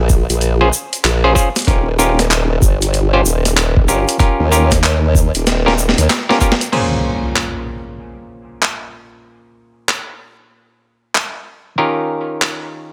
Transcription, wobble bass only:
Already playing: A#1
0.30 A#1
1.04 A#1
1.67 D#1
2.62 G1
3.25 D#1
3.88 G1
4.40 D#2
5.35 D#1
5.98 D#2

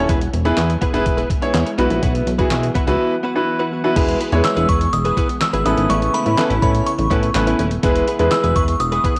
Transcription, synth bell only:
4.45 E6
4.69 C#6
4.93 D#6
5.41 E6
5.66 D#6
5.90 C#6
6.14 B5
6.62 B5
6.86 C#6
8.32 E6
8.56 C#6
8.80 D#6

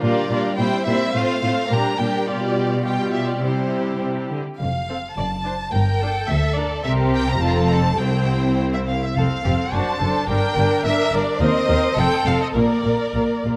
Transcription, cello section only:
0.03 A#2
0.31 A#2
0.59 A#2
0.87 A#2
1.15 A2
1.43 A2
1.71 A#2
1.99 A#2
2.28 B2
3.44 C3
4.03 C3
4.31 D3
4.60 F2
5.18 F#2
5.74 G2
6.30 D2
6.86 C3
7.43 F2
8.00 C2
9.17 F2
9.46 F2
9.74 F#2
10.01 F#2
10.29 G2
10.57 G2
10.85 G2
11.13 G2
11.41 D#2
11.69 D#2
11.97 F2
12.26 F2
12.55 A#2
12.85 A#2
13.15 A#2
13.45 A#2

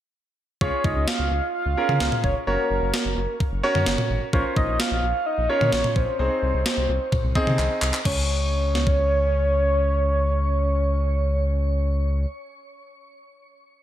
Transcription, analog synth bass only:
0.61 C#2
0.84 C#2
0.96 C#2
1.19 C#2
1.31 C#2
1.66 C#2
1.89 C#3
2.01 C#2
2.24 F1
2.47 F#1
2.70 F#1
2.82 F#1
3.05 F#1
3.17 F#1
3.52 F#1
3.75 F#2
3.87 F#1
4.10 G#1
4.33 A#1
4.57 A#1
4.68 A#1
4.91 A#1
5.03 A#1
5.38 A#1
5.61 A#2
5.73 A#1
5.96 A#1
6.19 C2
6.43 C2
6.54 C2
6.77 C2
6.89 C2
7.24 C2
7.47 C3
7.59 C2
7.82 C2
8.05 C#2

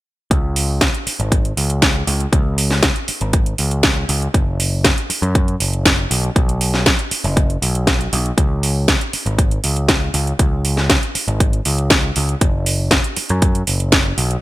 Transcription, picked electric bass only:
0.31 C#2
1.07 muted picked electric bass stroke
1.20 G#1
1.57 C#2
2.07 C#2
2.32 C#2
3.09 muted picked electric bass stroke
3.21 G#1
3.59 C#2
4.09 C#2
4.34 F#1
5.10 muted picked electric bass stroke
5.22 F#2
5.60 F#1
6.11 B1
6.36 B1
7.11 muted picked electric bass stroke
7.24 F#1
7.62 B1
8.13 B1
8.38 C#2
9.14 muted picked electric bass stroke
9.26 G#1
9.64 C#2
10.14 C#2
10.39 C#2
11.15 muted picked electric bass stroke
11.28 G#1
11.66 C#2
12.17 C#2
12.41 F#1
13.17 muted picked electric bass stroke
13.30 F#2
13.68 F#1
14.18 B1

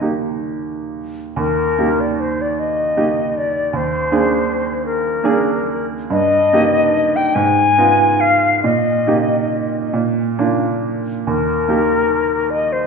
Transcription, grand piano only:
Already playing: D#2
0.01 A#3 D#4 G4
1.36 D#2
1.79 A#3 D#4 G4
2.97 A#3 D#4 G4
3.73 D#2
4.12 A#3 D4 G#4
5.24 A#3 D4 G#4
6.10 G2
6.53 A#3 D#4 G4
7.36 G#2
7.78 B3 D#4 F4
8.64 A#2
9.07 A#3 D#4 G4
9.93 A#2
10.39 A#3 D4 F4
11.27 D#2
11.68 A#3 D#4 G4

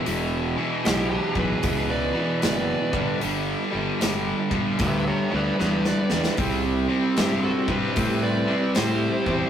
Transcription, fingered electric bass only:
0.08 E1
0.87 B1
1.35 B1
1.64 C#2
2.45 F#1
2.94 G1
3.25 G1
3.75 G1
4.03 G1
4.52 G1
4.80 D2
5.33 D2
5.61 E2
6.12 E2
6.38 C2
7.20 G2
7.69 G2
7.97 A2
8.78 A2
9.27 E2

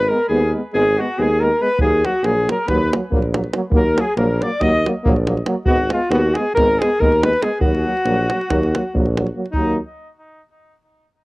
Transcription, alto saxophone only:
0.08 A#4
0.28 G#4
0.74 G#4
1.01 F#4
1.22 G#4
1.44 A#4
1.62 B4
1.81 G#4
2.05 F#4
2.26 G#4
2.51 A#4
2.69 B4
3.78 A#4
4.01 G#4
4.17 A#4
4.43 D5
4.63 D#5
5.65 F#4
5.92 F4
6.10 F#4
6.37 G#4
6.55 A#4
6.81 G#4
7.01 A#4
7.23 B4
7.42 G#4
7.61 F#4
9.52 D#4

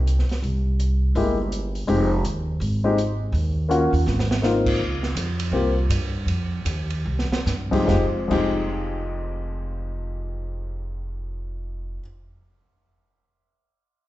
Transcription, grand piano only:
1.16 G#3 A#3 E4 G4
1.87 G#3 C4 D#4 G4
2.84 G#3 C4 D#4 G4
3.69 A#3 C#4 F4 F#4
4.42 A#3 C4 D#4 F4
5.53 A#3 C4 F4 G4
7.71 F2 G#3 C4 D#4 G4
7.85 F2 F3 G#3 D#4 G4
8.28 F2 F3 G#3 D#4 G4

